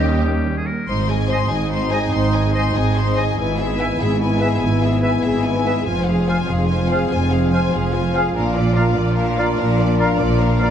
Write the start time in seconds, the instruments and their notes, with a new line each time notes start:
Already playing: double bass section D#2, cello section D#2, french horn section G3 C#4, viola section G3 C#4, oboe G4, violin section G4, clarinet D#5, trumpet section D#5
0.24 oboe G4
0.57 oboe G#4
0.66 oboe A#4
0.88 double bass section G#1, cello section G#2, french horn section G#3 C4, trumpet section D#4, viola section D#4, violin section C5 C6
1.09 viola section G#4, violin section D#5 G#5
1.29 viola section D#4, clarinet C5, violin section C5 C6, oboe D#5, flute section G#5
1.50 double bass section G#1, cello section G#2, viola section G#4, violin section D#5 G#5
1.71 viola section D#4, violin section C5 C6
1.91 viola section G#4, clarinet C5, violin section D#5 G#5, oboe D#5, flute section G#5
2.12 double bass section G#1, cello section G#2, viola section D#4, violin section C5 C6
2.34 viola section G#4, violin section D#5 G#5
2.54 viola section D#4, clarinet C5, violin section C5 C6, oboe D#5, flute section G#5
2.74 double bass section G#1, cello section G#2, viola section G#4, violin section D#5 G#5
2.95 viola section D#4, violin section C5 C6
3.16 viola section G#4, clarinet C5, oboe D#5, violin section D#5 G#5, flute section G#5
3.37 double bass section G#1, cello section G#2, french horn section B3, viola section E4, trumpet section E4, violin section B4 G#5
3.58 violin section G#4 E5, viola section G#4
3.78 viola section E4, clarinet B4, violin section B4 G#5, oboe E5, flute section G#5
4.00 double bass section G#1, cello section G#2, viola section G#4, violin section G#4 E5
4.21 viola section E4, violin section B4 G#5
4.40 viola section G#4, violin section G#4 E5, clarinet B4, oboe E5, flute section G#5
4.60 double bass section G#1, cello section G#2, viola section E4, violin section B4 G#5
4.82 viola section G#4, violin section G#4 E5
5.02 viola section E4, clarinet B4, violin section B4 G#5, oboe E5, flute section G#5
5.23 double bass section G#1, cello section G#2, viola section G#4, violin section G#4 E5
5.45 viola section E4, violin section B4 G#5
5.65 violin section G#4 E5, viola section G#4, clarinet B4, oboe E5, flute section G#5
5.86 double bass section F1, cello section F2, french horn section G#3 C4, trumpet section F4, viola section F4, violin section C5 G#5
6.06 viola section G#4, violin section G#4 F5
6.27 viola section F4, clarinet C5, violin section C5 G#5, oboe F5, flute section G#5
6.48 double bass section F1, cello section F2, viola section G#4, violin section G#4 F5
6.68 viola section F4, violin section C5 G#5
6.89 violin section G#4 F5, viola section G#4, clarinet C5, oboe F5, flute section G#5
7.11 double bass section F1, cello section F2, viola section F4, violin section C5 G#5
7.31 viola section G#4, violin section G#4 F5
7.52 viola section F4, violin section C5 G#5, clarinet C5, oboe F5, flute section G#5
7.72 double bass section F1, cello section F2, viola section G#4, violin section G#4 F5
7.93 viola section F4, violin section C5 G#5
8.14 violin section G#4 F5, viola section G#4, clarinet C5, oboe F5, flute section G#5
8.34 double bass section A#1, cello section A#2, french horn section A#3 D4, viola section D4, violin section A#4 F5
8.54 viola section F4, violin section D5
8.75 viola section D4, violin section A#4 F5, clarinet D5, oboe F5, flute section A#5
8.95 double bass section A#1, cello section A#2, viola section F4, violin section D5
9.14 viola section D4, violin section A#4 F5
9.37 viola section F4, violin section D5, clarinet D5, oboe F5, flute section A#5
9.57 double bass section A#1, cello section A#2, viola section D4, violin section A#4 F5
9.79 viola section F4, violin section D5
9.99 viola section D4, violin section A#4 F5, clarinet D5, oboe F5, flute section A#5
10.19 double bass section A#1, cello section A#2, viola section F4, violin section D5
10.40 viola section D4, violin section A#4 F5
10.59 viola section F4, violin section D5, clarinet D5, oboe F5, flute section A#5